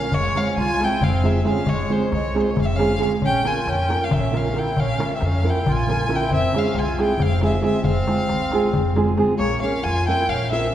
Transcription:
Already playing: C#4 F5
0.12 F1 G#3 C#5, darbuka dum
0.35 G#3 C4 C#4 F4 G#4 F5, darbuka tek
0.57 C2 F4 G#5, darbuka tek
0.69 darbuka tek
0.80 G#3 C4 E4 F4 G#4 G5, darbuka tek
0.92 darbuka tek
1.01 F1 C4 F5, darbuka dum
1.23 G#3 C4 F4 G#4 E5, darbuka tek
1.28 C4
1.44 G#3 C4 F4 G#4 F5, darbuka tek
1.49 C#4
1.56 darbuka tek
1.66 F1 C#5, darbuka dum
1.70 G#3
1.78 darbuka tek
1.89 G#3 C4 F4 G#4 C5
1.95 G#3
2.02 darbuka tek
2.12 C2 G#3 C#5, darbuka tek
2.35 G#3 C4 F4 G#4, darbuka tek
2.40 G#3 C5 C#5
2.47 A#3 C#5, darbuka tek
2.57 F1 C4, darbuka dum
2.61 C4 F5
2.65 E5, darbuka tek
2.75 G#3 C#4 F5
2.79 C4 F4 G#4, darbuka tek
2.90 darbuka tek
2.99 G#3 C4 C#4 F4 G#4, darbuka tek
3.03 F5
3.11 darbuka tek
3.21 A#1 C#4, darbuka dum
3.26 G5
3.44 A#3 C#4 F4 A#4 G#5, darbuka tek
3.66 F2 C#4 G5, darbuka tek
3.78 darbuka tek
3.88 A#3 C#4 F4 A#4, darbuka tek
4.01 C#4 F5, darbuka tek
4.11 A#1 C#4 E5, darbuka dum
4.31 A#3 C#4 F4 A#4, darbuka tek
4.36 C#4 F5
4.53 A#3 C#4 F4 A#4, darbuka tek
4.59 E4 G5
4.67 darbuka tek
4.76 A#1 C#4 F5, darbuka dum
4.98 A#3 C#4 F4 A#4, darbuka tek
5.14 C4 E5
5.21 F2, darbuka tek
5.25 C#4 F5
5.33 darbuka tek
5.42 A#3 C#4 F4 A#4
5.47 E4 G5
5.55 darbuka tek
5.66 A#1 F4, darbuka dum
5.72 G#5
5.88 A#3 C#4 F4 A#4, darbuka tek
6.08 A#3 C#4 E4 F4 A#4, darbuka tek
6.16 G5
6.21 darbuka tek
6.30 F1 C4, darbuka dum
6.35 E5
6.53 G#3 C4 C#4 F4 G#4, darbuka tek
6.58 F5
6.74 C2 F4, darbuka tek
6.79 G#5
6.87 darbuka tek
6.99 G#3 C4 E4 F4 G#4 G5, darbuka tek
7.09 darbuka tek
7.18 F1, darbuka dum
7.22 C4 F5
7.41 G#3 C4 F4 G#4, darbuka tek
7.46 E5
7.61 G#3 C4 F4 G#4, darbuka tek
7.66 E5
7.75 darbuka tek
7.83 F1 C4 F5, darbuka dum
7.96 darbuka tek
8.07 G#3 C4 F4 G#4, darbuka tek
8.19 darbuka tek
8.29 C2, darbuka tek
8.52 G#3 C4 F4 G#4, darbuka tek
8.63 darbuka tek
8.73 F1, darbuka dum
8.86 darbuka tek
8.96 G#3 C4 F4 G#4, darbuka tek
9.17 G#3 C4 F4 G#4, darbuka tek
9.29 darbuka tek
9.38 A#1 A#3 C#5
9.61 A#3 C#4 F4 A#4 F5
9.82 F2 F4 G#5
10.06 A#3 C#4 E4 F4 A#4 G5
10.28 A#1 C#4 F5
10.50 A#3 C4 C#4 F4 A#4 E5

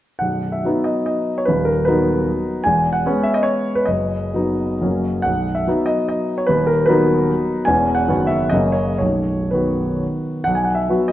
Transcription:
0.19 B0 B1 F#5
0.52 E5
0.65 F#3 B3 D#4
0.84 D#5
1.06 D#5
1.38 C#5
1.45 D#1 D#2 B4
1.65 A#4
1.85 F#3 B3 D#4 B4
2.64 E1 E2 G#5
2.93 F#5
3.06 G#3 B3 C#4
3.23 E5
3.34 D#5
3.43 C#5
3.75 B4
3.85 F#1 F#2 D#5
4.34 F#3 B3 D#4
4.82 F#1 F#2 F#3 A#3 C#4
5.22 B0 B1 F#5
5.55 E5
5.67 F#3 B3 D#4
5.86 D#5
6.09 D#5
6.38 C#5
6.47 D#1 D#2 B4
6.67 A#4
6.86 F#3 B3 D#4 B4
7.65 E1 E2 E3 B3 C#4 G#5
7.95 F#5
8.08 F#1 F#2 D#3 B3 F#4
8.27 E5
8.49 F#1 F#2 C#3 A#3 F#4 D#5
8.72 C#5
8.98 B0 B1 C#5
9.51 D#3 B3 F#4 B4
10.44 B1 F#5
10.55 G#5
10.65 F#5
10.75 E5
10.89 F#3 B3 F#4
11.08 D#5

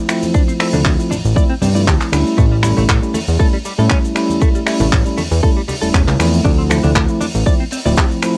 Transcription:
0.08 F3 A3 C4 E4, finger snap, open hi-hat, cabasa
0.23 high conga, cabasa
0.34 D4, kick, cabasa
0.48 C4, cabasa
0.59 F3 A3 C4 E4 A4, finger snap, open hi-hat, cabasa
0.73 D2 D4, low conga, cabasa
0.85 D2, kick, clap, cabasa
0.98 F3 A3 C4 E4, cabasa
1.11 A1 D4, open hi-hat, high conga, cabasa
1.25 A1, cabasa
1.35 F3 A3 C4 E4 D5, kick, cabasa
1.50 C4
1.62 G2 C4, open hi-hat, low conga, cabasa
1.74 F3 A3 C4 E4 D5, cabasa
1.87 D2 G4, kick, clap, cabasa
2.01 clap, cabasa
2.12 D2 G3 A3 C#4 E4, finger snap, open hi-hat, cabasa
2.27 cabasa
2.38 A1 A3, kick, cabasa
2.52 G3
2.63 G3 A3 C#4 E4, finger snap, open hi-hat, high conga, cabasa
2.77 A1 A3, low conga, cabasa
2.89 A1, kick, clap, cabasa
3.02 G3 A3 C#4 E4, cabasa
3.14 A3, open hi-hat, high conga, cabasa
3.28 E2, cabasa
3.39 G3 A3 C#4 E4 A4, kick, cabasa
3.53 G3
3.65 G3, open hi-hat, cabasa
3.78 A2 G3 A3 C#4 E4 A4, cabasa
3.90 C#4, kick, clap, cabasa
4.05 cabasa
4.15 G3 A3 C#4 E4, finger snap, open hi-hat, cabasa
4.30 high conga, cabasa
4.42 A3, kick, cabasa
4.55 G3, cabasa
4.66 G3 A3 C#4 E4, finger snap, open hi-hat, cabasa
4.80 A1 A3, low conga, cabasa
4.92 A1, kick, clap, cabasa
5.05 G3 A3 C#4 E4, cabasa
5.18 E2 A3, open hi-hat, high conga, cabasa
5.31 E2, cabasa
5.43 G3 A3 C#4 E4 A4, kick, cabasa
5.57 G3
5.68 G3, open hi-hat, low conga, cabasa
5.81 E1 G3 A3 C#4 E4 A4, cabasa
5.94 E1 C#4, kick, clap, cabasa
6.07 C#2, clap, cabasa
6.19 E2 F3 A3 C4 E4, finger snap, open hi-hat, cabasa
6.34 cabasa
6.44 D2 D4, kick, cabasa
6.58 C4
6.70 F3 A3 C4 E4 A4, finger snap, open hi-hat, high conga, cabasa
6.83 D2 D4, low conga, cabasa
6.95 D2, kick, clap, cabasa
7.08 F3 A3 C4 E4, cabasa
7.21 D4, open hi-hat, high conga, cabasa
7.35 A1, cabasa
7.46 F3 A3 C4 E4 D5, kick, cabasa
7.60 C4
7.71 C4, open hi-hat, cabasa
7.85 D1 F3 A3 C4 E4 D5, cabasa
7.96 G4, kick, clap, cabasa
8.11 cabasa
8.22 F3 A3 C4 E4, finger snap, open hi-hat, cabasa

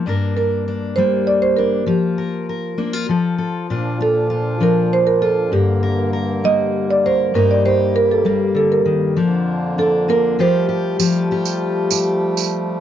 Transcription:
0.06 G2 A#3 D4 A#4
0.37 D4 A#4
0.68 D4
0.96 G3 A#3 C5
1.27 D5
1.42 C5
1.57 D4 A#4
1.86 F3 F4 G4
2.18 A#4
2.49 A#4
2.78 A#3 D4
2.93 F4
3.09 F3 F4 A4
3.38 A4
3.70 A#2 F3 D4 F4
4.01 F4 A4
4.30 F4
4.60 F3 D4 A#4
4.93 C5
5.07 A#4
5.22 F4 A4
5.51 G2 D3 A#3 G4
5.83 A#4
6.13 A#4
6.44 G3 A#3 D#5
6.91 D5
7.06 A#4 C5
7.34 G2 G3 A#3 D#4 G4 A#4
7.51 D5
7.65 G4 C5
7.96 A#4
8.12 A4
8.25 G3 A#3 G4
8.55 D3 A4
8.72 A#4
8.85 D#3
9.17 F2 D3 F3 A#3 D4
9.78 D4 A4
10.08 A#3 D4 A#4
10.39 F3 G3 A3 F4 G4 C5
10.69 G4
10.99 F3 G3 A3 F4 G4, tambourine
11.31 F4 G4
11.45 tambourine
11.91 G4, tambourine
12.37 tambourine

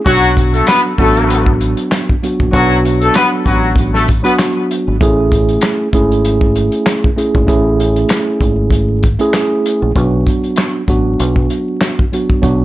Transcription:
0.06 B1 F#3 B3 D4 F#4, kick, closed hi-hat
0.37 kick, closed hi-hat
0.53 A3 A4, closed hi-hat
0.66 B3 B4, finger snap, snare, clap, closed hi-hat
0.98 A1 F#3 A3 B3 D4 F#4 A4, kick, open hi-hat
1.17 closed hi-hat
1.30 closed hi-hat
1.46 kick
1.61 closed hi-hat
1.77 closed hi-hat
1.91 finger snap, snare, clap, closed hi-hat
2.09 kick
2.23 F#3 B3 D4 F#4, closed hi-hat
2.40 A#1, kick
2.52 B1 F#3 B3 D4 F#4, kick, closed hi-hat
2.85 closed hi-hat
3.01 A3 A4, closed hi-hat
3.14 B3 B4, finger snap, snare, clap, closed hi-hat
3.46 A1 F#3 F#4, kick, closed hi-hat
3.76 kick, closed hi-hat
3.94 A3 A4, snare
4.08 kick, closed hi-hat
4.23 F#3 B3 D4 F#4 B4, closed hi-hat
4.39 finger snap, snare, clap, closed hi-hat
4.71 closed hi-hat
4.88 G#1
5.00 A1 A3 C#4 E4 G#4, kick, closed hi-hat
5.32 kick, closed hi-hat
5.49 closed hi-hat
5.61 finger snap, snare, clap, closed hi-hat
5.93 G#1 A3 C#4 E4 G#4, kick, closed hi-hat
6.12 closed hi-hat
6.25 closed hi-hat
6.41 kick
6.55 closed hi-hat
6.72 closed hi-hat
6.86 finger snap, snare, clap, closed hi-hat
7.04 kick
7.16 A3 C#4 E4 G#4, closed hi-hat
7.35 G#1, kick
7.47 A1 A3 C#4 E4 G#4, kick, closed hi-hat
7.80 closed hi-hat
7.96 closed hi-hat
8.09 finger snap, snare, clap, closed hi-hat
8.41 G#1, kick, closed hi-hat
8.70 kick, closed hi-hat
9.03 kick, closed hi-hat
9.19 A3 C#4 E4 G#4, closed hi-hat
9.34 finger snap, snare, clap, closed hi-hat
9.66 closed hi-hat
9.82 A#1
9.95 B1 F#3 B3 D4 F#4, kick, closed hi-hat
10.27 kick, closed hi-hat
10.44 closed hi-hat
10.56 snare, clap, closed hi-hat
10.88 A1 F#3 B3 D4 F#4, kick, closed hi-hat
11.20 B1, closed hi-hat
11.36 kick
11.50 closed hi-hat
11.81 snare, clap, closed hi-hat
11.99 kick
12.12 F#3 B3 D4 F#4, closed hi-hat
12.30 kick
12.42 B1 F#3 B3 D4 F#4, kick, closed hi-hat

